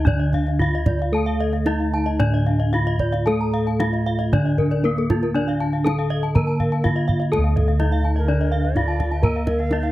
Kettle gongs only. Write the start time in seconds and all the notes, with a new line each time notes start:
Already playing: D2 D4
0.60 D#4
1.12 A4
1.66 D#4
2.20 A2
2.73 D#4
3.27 A4
3.80 D#4
4.32 D3
4.84 D#4
5.36 D4
5.85 D#4
6.35 D3
6.85 D#4
7.32 A4
7.38 D2
7.80 D#4
8.75 D#4
9.23 A#4
9.71 D#4